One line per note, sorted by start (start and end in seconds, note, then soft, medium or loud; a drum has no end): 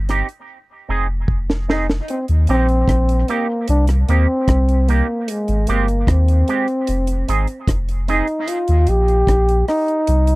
0.00 0.22 G1 medium
0.09 0.26 C4 medium
0.09 0.26 D#4 medium
0.09 0.27 G4 medium
0.09 cross-stick medium
0.09 closed hi-hat medium
0.29 closed hi-hat soft
0.89 1.25 F1 loud
0.89 1.06 C4 medium
0.89 1.06 D#4 medium
0.89 1.07 G#4 medium
1.28 2.00 F1 medium
1.28 kick loud
1.50 snare medium
1.68 1.86 C4 medium
1.68 1.86 D#4 medium
1.68 1.87 G#4 medium
1.68 snare medium
1.90 snare medium
2.08 2.26 C4 medium
2.08 closed hi-hat loud
2.28 2.47 D#2 medium
2.28 closed hi-hat soft
2.47 2.84 A#1 loud
2.47 2.66 C4 medium
2.47 3.31 C4 loud
2.47 2.66 D#4 medium
2.47 2.66 G4 medium
2.47 closed hi-hat medium
2.69 closed hi-hat soft
2.88 3.24 A#1 loud
2.88 kick loud
2.88 cross-stick medium
2.88 closed hi-hat medium
3.09 closed hi-hat medium
3.28 3.69 A#3 medium
3.28 3.46 C4 medium
3.28 3.46 D#4 medium
3.28 3.47 G4 loud
3.28 closed hi-hat medium
3.68 4.04 C2 loud
3.68 3.86 D4 loud
3.68 closed hi-hat medium
3.87 cross-stick medium
3.87 closed hi-hat medium
4.08 4.26 D#2 medium
4.08 4.26 A#3 medium
4.08 4.91 C4 loud
4.08 4.26 D#4 medium
4.08 4.27 G4 medium
4.08 closed hi-hat medium
4.48 5.02 C2 medium
4.48 kick loud
4.48 cross-stick loud
4.48 closed hi-hat loud
4.69 closed hi-hat soft
4.88 5.06 A#3 medium
4.88 5.31 A#3 medium
4.88 5.06 D#4 medium
4.88 5.06 G4 medium
4.88 closed hi-hat medium
5.28 5.71 G#3 medium
5.28 closed hi-hat loud
5.48 5.66 G#1 loud
5.48 closed hi-hat soft
5.67 6.04 G1 loud
5.67 5.85 G#3 medium
5.67 6.11 A#3 medium
5.67 5.86 C4 loud
5.67 5.86 G4 loud
5.67 closed hi-hat medium
5.88 closed hi-hat soft
6.07 6.43 D#2 loud
6.07 7.69 C4 medium
6.07 kick medium
6.07 cross-stick medium
6.07 closed hi-hat medium
6.28 closed hi-hat medium
6.48 6.65 G#3 medium
6.48 6.66 C4 medium
6.48 6.66 G4 medium
6.48 closed hi-hat medium
6.68 closed hi-hat soft
6.87 7.24 F1 loud
6.87 closed hi-hat medium
7.07 closed hi-hat medium
7.28 7.46 G#1 loud
7.28 7.45 C4 medium
7.28 7.46 D#4 medium
7.28 7.46 G#4 medium
7.28 closed hi-hat medium
7.47 closed hi-hat soft
7.68 8.22 F1 loud
7.68 kick loud
7.68 cross-stick loud
7.68 closed hi-hat loud
7.89 closed hi-hat medium
8.08 8.25 C4 medium
8.08 8.26 D#4 medium
8.08 8.51 D#4 medium
8.08 8.26 G#4 loud
8.08 closed hi-hat medium
8.27 closed hi-hat soft
8.48 8.90 F4 medium
8.48 closed hi-hat loud
8.68 8.86 D#2 loud
8.68 closed hi-hat soft
8.87 9.24 A#1 medium
8.87 9.68 G4 loud
8.87 closed hi-hat medium
9.08 closed hi-hat soft
9.27 9.63 A#1 loud
9.27 kick medium
9.27 cross-stick loud
9.27 closed hi-hat medium
9.49 closed hi-hat medium
9.68 10.35 D#4 loud
9.68 cross-stick medium
9.68 open hi-hat soft
9.88 closed hi-hat soft
10.07 10.35 C2 loud
10.07 closed hi-hat medium
10.27 closed hi-hat medium